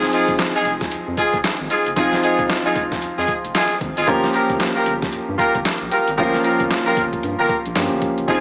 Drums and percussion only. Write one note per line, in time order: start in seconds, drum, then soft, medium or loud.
0.02 snare medium
0.13 closed hi-hat medium
0.28 kick medium
0.28 closed hi-hat medium
0.39 snare loud
0.39 clap medium
0.39 closed hi-hat medium
0.65 closed hi-hat medium
0.81 kick medium
0.81 snare medium
0.81 closed hi-hat soft
0.91 closed hi-hat medium
1.17 kick medium
1.17 closed hi-hat medium
1.33 kick medium
1.33 closed hi-hat medium
1.44 snare loud
1.44 clap medium
1.44 closed hi-hat medium
1.70 closed hi-hat medium
1.86 closed hi-hat medium
1.97 kick loud
1.97 closed hi-hat medium
2.13 snare medium
2.23 closed hi-hat medium
2.39 kick medium
2.39 closed hi-hat medium
2.50 snare loud
2.50 clap medium
2.50 closed hi-hat medium
2.76 kick medium
2.76 closed hi-hat medium
2.92 kick medium
2.92 snare medium
2.92 closed hi-hat medium
3.02 closed hi-hat medium
3.28 kick loud
3.28 closed hi-hat medium
3.45 closed hi-hat medium
3.55 snare loud
3.55 clap loud
3.55 closed hi-hat medium
3.81 kick medium
3.81 closed hi-hat medium
3.97 closed hi-hat medium
4.07 kick loud
4.07 closed hi-hat medium
4.24 snare medium
4.34 closed hi-hat medium
4.49 kick medium
4.49 closed hi-hat soft
4.60 snare loud
4.60 clap medium
4.60 closed hi-hat medium
4.86 closed hi-hat medium
5.02 kick medium
5.02 snare medium
5.02 closed hi-hat soft
5.13 closed hi-hat medium
5.39 kick loud
5.39 closed hi-hat medium
5.55 kick medium
5.55 closed hi-hat medium
5.65 snare loud
5.65 clap medium
5.65 closed hi-hat medium
5.91 closed hi-hat medium
6.08 closed hi-hat medium
6.18 kick loud
6.18 closed hi-hat medium
6.34 snare medium
6.44 closed hi-hat medium
6.60 kick medium
6.60 closed hi-hat soft
6.71 snare loud
6.71 clap loud
6.71 closed hi-hat medium
6.97 kick medium
6.97 closed hi-hat medium
7.13 kick medium
7.13 closed hi-hat medium
7.23 closed hi-hat medium
7.49 kick loud
7.49 closed hi-hat medium
7.66 closed hi-hat medium
7.75 snare loud
7.75 clap medium
7.75 closed hi-hat medium
8.02 kick medium
8.02 closed hi-hat medium
8.18 closed hi-hat soft
8.28 kick loud
8.28 closed hi-hat medium